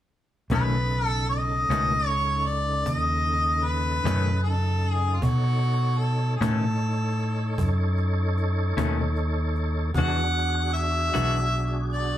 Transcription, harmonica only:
0.53 1.07 B4 medium
1.07 1.26 A4 medium
1.29 2.07 D#5 loud
2.07 2.48 C#5 loud
2.47 2.84 D5 medium
2.84 2.95 D5 loud
2.95 3.66 D#5 loud
3.65 4.42 B4 medium
4.43 4.90 A4 medium
4.90 5.17 G#4 medium
5.15 5.24 F4 medium
5.23 6.00 F#4 medium
5.98 6.36 A4 medium
6.37 7.92 A4 medium
9.96 10.70 F#5 loud
10.73 11.87 E5 loud
11.93 12.18 D5 medium

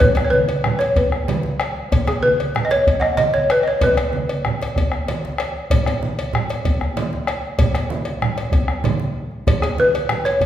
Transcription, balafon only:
0.00 0.26 B4 medium
0.25 0.32 C#5 medium
0.30 0.81 B4 medium
0.79 0.96 C#5 medium
0.97 1.41 B4 medium
2.08 2.24 G#4 medium
2.23 2.65 B4 medium
2.65 2.71 D#5 medium
2.71 2.99 C#5 medium
3.00 3.16 D#5 medium
3.00 3.03 F#5 medium
3.17 3.34 D#5 medium
3.34 3.50 C#5 medium
3.51 3.62 B4 medium
3.63 3.66 D#5 medium
3.68 3.83 C#5 medium
3.84 4.41 B4 medium
9.62 9.79 G#4 medium
9.80 10.28 B4 medium
10.25 10.46 C#5 medium

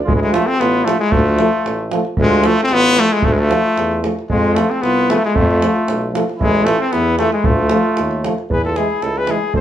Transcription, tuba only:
0.06 0.35 D2 loud
0.59 0.89 A1 loud
1.11 1.41 D2 loud
1.65 1.94 A1 medium
2.19 2.48 D2 loud
2.72 3.01 A1 loud
3.25 3.54 D2 loud
3.77 4.06 E2 medium
4.30 4.59 F2 loud
4.83 5.12 C2 medium
5.35 5.64 F2 loud
5.88 6.17 B1 medium
6.40 6.69 A1 loud
6.93 7.22 E2 loud
7.45 7.74 D2 loud
7.98 8.27 D#2 medium
8.49 8.78 E2 loud
9.02 9.31 C#2 medium
9.54 9.61 D2 loud

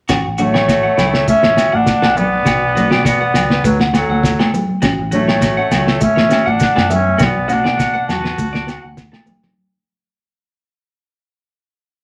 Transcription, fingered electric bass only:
0.10 0.23 A1 medium
0.27 0.87 A1 medium
0.99 1.23 C#2 medium
1.45 1.56 A1 medium
1.74 1.85 A1 medium
2.03 2.39 A#1 medium
2.46 2.59 B1 loud
2.62 2.87 B1 medium
2.92 3.28 B2 medium
3.35 3.60 C#2 medium
3.64 4.02 D2 medium
4.08 4.34 D2 medium
4.83 4.96 A1 medium
4.99 5.60 A1 medium
5.72 5.97 C#2 loud
6.17 6.29 A1 medium
6.47 6.58 A1 medium
6.77 7.13 F#2 medium
7.20 7.33 B1 medium
7.37 7.61 B1 medium
7.67 8.03 B2 medium
8.09 8.34 E2 medium
8.39 8.77 D2 medium
8.84 9.09 D2 medium

